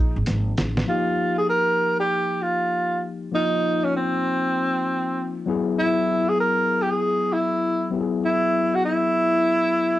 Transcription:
0.00 0.12 A#1 loud
0.00 0.83 F3 medium
0.00 0.84 A#3 medium
0.00 0.23 D#4 medium
0.00 0.84 D#4 medium
0.00 0.85 G#4 medium
0.16 0.25 G#1 medium
0.26 0.51 G#1 medium
0.26 snare medium
0.26 closed hi-hat medium
0.57 0.82 A1 medium
0.57 snare medium
0.57 closed hi-hat soft
0.57 shaker soft
0.77 snare medium
0.86 3.28 F3 medium
0.86 3.29 A#3 medium
0.86 3.29 D#4 medium
0.86 1.35 F4 medium
0.86 3.30 G4 medium
1.38 1.49 G#4 medium
1.49 1.96 A#4 loud
2.00 2.43 G4 loud
2.42 3.03 F4 medium
3.31 5.43 F3 medium
3.31 5.43 A#3 medium
3.31 5.44 D#4 medium
3.31 3.86 D#4 loud
3.31 5.44 F4 medium
3.84 3.95 C#4 medium
3.96 5.44 C4 medium
5.46 7.88 F#3 medium
5.46 7.88 B3 medium
5.46 7.89 E4 medium
5.46 7.89 G#4 medium
5.79 6.30 E4 medium
6.29 6.40 G#4 loud
6.40 6.84 A#4 loud
6.82 6.92 G4 medium
6.91 7.34 G#4 medium
7.33 7.93 E4 medium
7.90 9.99 F#3 medium
7.90 9.99 B3 medium
7.90 9.99 E4 medium
7.90 8.01 G4 medium
8.01 9.99 G#4 medium
8.25 8.76 E4 medium
8.75 8.84 F#4 loud
8.85 9.99 E4 loud

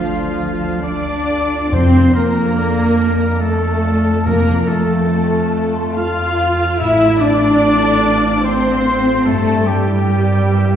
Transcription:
0.00 1.69 D2 medium
0.00 1.76 D3 medium
0.00 0.83 F3 medium
0.00 3.05 A3 medium
0.00 1.93 D4 medium
0.00 0.83 F4 medium
0.00 0.83 F4 loud
0.00 1.50 F4 medium
0.00 1.28 A4 medium
0.00 0.32 F5 medium
0.00 0.83 F5 loud
0.00 0.57 A5 soft
0.07 1.07 D5 medium
0.34 0.82 F5 medium
0.59 2.98 A5 medium
0.83 1.72 D4 medium
0.83 1.73 D4 medium
0.83 1.73 D4 loud
0.83 1.74 D5 loud
0.83 1.71 D5 loud
0.83 2.77 F5 medium
0.83 1.73 D6 loud
1.08 2.57 D5 medium
1.30 2.35 A4 medium
1.52 2.15 F4 medium
1.72 2.95 F2 loud
1.72 6.76 F2 medium
1.72 4.25 F3 medium
1.72 2.14 C4 medium
1.72 2.14 C4 loud
1.72 2.16 C5 medium
1.72 2.15 C5 loud
1.72 2.15 C6 loud
1.94 4.30 D4 medium
2.15 3.41 A#3 loud
2.15 3.42 A#3 medium
2.15 4.66 F4 medium
2.15 3.42 A#4 medium
2.15 3.42 A#4 loud
2.15 3.42 A#5 loud
2.37 4.04 A4 medium
2.58 3.83 D5 medium
2.78 3.61 F5 medium
2.99 3.40 A5 medium
3.21 4.30 D6 medium
3.41 4.26 A3 medium
3.41 4.26 A3 loud
3.41 4.26 A3 medium
3.41 4.25 A4 medium
3.41 4.26 A4 loud
3.41 5.51 A5 medium
3.41 4.27 A5 loud
3.62 5.29 F5 medium
3.84 4.30 D5 medium
4.06 4.87 A4 medium
4.26 5.49 F2 loud
4.26 8.16 F3 medium
4.26 4.67 A#3 medium
4.26 4.67 A#3 loud
4.26 4.69 A#4 medium
4.26 4.68 A#4 loud
4.26 4.68 A#5 loud
4.47 7.19 C4 medium
4.68 5.97 A3 loud
4.68 5.97 A3 medium
4.68 5.98 A3 medium
4.68 7.40 F4 medium
4.68 5.69 A4 medium
4.68 5.98 A4 loud
4.68 5.98 A5 loud
4.88 6.58 A4 medium
5.09 6.38 C5 medium
5.30 6.17 F5 medium
5.52 5.96 A5 medium
5.75 9.65 C6 medium
5.97 6.79 F4 loud
5.97 6.80 F4 loud
5.97 6.79 F5 loud
5.97 6.80 F5 loud
5.97 8.22 A5 medium
5.97 6.78 F6 loud
6.40 7.81 C5 medium
6.59 7.61 A4 medium
6.79 9.26 A1 loud
6.79 9.30 A2 medium
6.79 7.20 E4 loud
6.79 7.21 E4 loud
6.79 7.20 E4 loud
6.79 7.22 E5 loud
6.79 7.20 E5 loud
6.79 7.21 E6 loud
7.00 9.30 A3 medium
7.20 9.66 C4 medium
7.20 8.44 D4 loud
7.20 8.45 D4 loud
7.20 8.44 D5 loud
7.20 8.45 D5 loud
7.20 8.45 D6 loud
7.41 9.04 F4 medium
7.62 8.84 A4 medium
7.83 8.63 C5 medium
8.03 8.43 F5 medium
8.23 9.29 A5 medium
8.44 9.26 C4 loud
8.44 9.09 C4 medium
8.44 9.25 C4 loud
8.44 9.27 C5 loud
8.44 9.26 C5 loud
8.44 9.29 F5 medium
8.44 9.27 C6 loud
8.64 10.30 C5 medium
8.85 9.29 A4 medium
9.06 9.30 F4 medium
9.26 10.76 G2 loud
9.26 10.76 G2 medium
9.26 9.66 A3 loud
9.26 9.67 A3 loud
9.26 9.68 A4 medium
9.26 9.67 A4 loud
9.26 9.67 A5 loud
9.47 10.76 G3 medium
9.67 10.76 G3 medium
9.67 10.76 G3 loud
9.67 10.76 G3 medium
9.67 10.76 C4 medium
9.67 10.76 G4 medium
9.67 10.76 G4 loud
9.67 10.76 G5 loud
9.87 10.76 E4 medium
10.08 10.76 A#4 medium
10.32 10.76 C5 medium
10.55 10.76 E5 medium

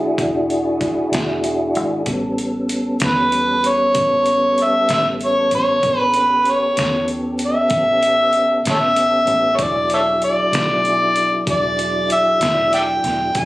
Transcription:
0.00 0.15 B1 medium
0.00 2.03 D4 medium
0.00 2.02 E4 medium
0.00 2.02 F#4 medium
0.00 2.03 G#4 medium
0.18 1.08 E1 medium
0.18 kick loud
0.18 closed hi-hat medium
0.50 closed hi-hat medium
0.81 kick medium
0.81 closed hi-hat soft
1.12 1.76 E1 medium
1.12 snare loud
1.12 closed hi-hat medium
1.44 closed hi-hat medium
1.75 2.05 G#1 medium
1.75 closed hi-hat medium
2.06 2.96 A1 medium
2.06 5.79 G3 medium
2.06 5.80 B3 medium
2.06 5.80 C#4 medium
2.06 5.80 A4 medium
2.06 kick medium
2.06 closed hi-hat medium
2.38 closed hi-hat medium
2.69 closed hi-hat medium
3.00 3.91 E2 medium
3.00 snare medium
3.00 closed hi-hat medium
3.06 3.69 B4 medium
3.32 closed hi-hat medium
3.64 4.65 C#5 loud
3.64 closed hi-hat medium
3.95 4.85 A1 medium
3.95 kick loud
3.95 closed hi-hat medium
4.26 closed hi-hat soft
4.58 closed hi-hat medium
4.63 4.92 E5 medium
4.89 5.48 A1 medium
4.89 snare loud
4.89 closed hi-hat medium
4.93 5.06 E5 medium
5.21 closed hi-hat medium
5.25 5.52 C#5 medium
5.51 5.81 A1 medium
5.51 5.99 C#5 loud
5.51 closed hi-hat medium
5.83 6.73 A1 medium
5.83 6.16 B3 medium
5.83 6.15 D4 medium
5.83 6.16 G#4 medium
5.83 6.15 A#4 medium
5.83 kick medium
5.83 closed hi-hat medium
5.99 6.20 B4 loud
6.14 9.57 B3 medium
6.14 9.57 C#4 medium
6.14 9.57 G4 medium
6.14 9.57 A4 medium
6.14 closed hi-hat medium
6.20 6.52 B4 medium
6.45 closed hi-hat medium
6.50 7.11 C#5 medium
6.77 7.67 E2 medium
6.77 snare loud
6.77 closed hi-hat medium
7.08 closed hi-hat medium
7.39 closed hi-hat medium
7.46 8.64 E5 medium
7.70 8.61 A1 medium
7.70 kick loud
7.70 closed hi-hat medium
8.03 closed hi-hat medium
8.33 closed hi-hat medium
8.65 9.24 A1 medium
8.65 snare loud
8.65 closed hi-hat medium
8.70 8.77 A4 medium
8.70 8.78 C#5 medium
8.70 9.57 E5 medium
8.96 closed hi-hat medium
9.27 9.56 A1 medium
9.27 closed hi-hat medium
9.56 10.49 E1 medium
9.56 13.32 F#3 medium
9.56 13.32 D4 medium
9.56 13.32 E4 medium
9.56 13.31 G#4 medium
9.56 9.65 C#5 medium
9.56 kick loud
9.56 closed hi-hat medium
9.63 9.93 D5 medium
9.90 10.01 A4 medium
9.90 10.00 C#5 medium
9.90 10.21 E5 medium
9.90 closed hi-hat medium
10.22 11.44 D5 medium
10.22 closed hi-hat medium
10.52 11.43 B1 medium
10.52 snare loud
10.52 closed hi-hat medium
10.85 closed hi-hat medium
11.16 closed hi-hat medium
11.47 12.37 E1 medium
11.47 12.08 D5 medium
11.47 kick medium
11.47 closed hi-hat medium
11.79 closed hi-hat medium
12.10 12.70 E5 medium
12.10 closed hi-hat medium
12.40 13.00 E1 medium
12.40 snare loud
12.40 closed hi-hat medium
12.73 12.82 D5 medium
12.73 12.83 E5 medium
12.73 13.40 G5 loud
12.73 closed hi-hat medium
13.04 13.33 E1 medium
13.04 snare soft
13.04 closed hi-hat medium
13.35 13.45 E1 medium
13.35 13.45 F#3 medium
13.35 13.45 D4 medium
13.35 13.45 E4 medium
13.35 13.45 G#4 medium
13.35 kick medium
13.35 closed hi-hat medium
13.39 13.45 G#5 loud

